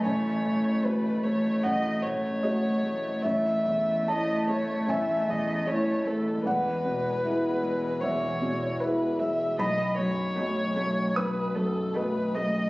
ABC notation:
X:1
M:4/4
L:1/8
Q:1/4=76
K:F#dor
V:1 name="Violin"
c2 B c d c3 | e2 d c e d c A | B4 c2 B e | d c3 B A B d |]
V:2 name="Cello"
A,8 | A,8 | G,8 | A, A, A, A, A, A, A, A, |]
V:3 name="Felt piano"
g4 f2 d2 | c2 a2 g4 | f4 e2 z2 | b4 d'4 |]
V:4 name="Felt piano"
A,,, A,, [A,Fc] A, A,,, A,, [A,Fc] A, | A,,, E,, [A,Ec] A, A,,, E,, [A,Ec] A, | E,, B,, [G,Ee] G, E,, B,, [G,Ee] G, | B,,, F,, [A,Fd] A, B,,, F,, [A,Fd] A, |]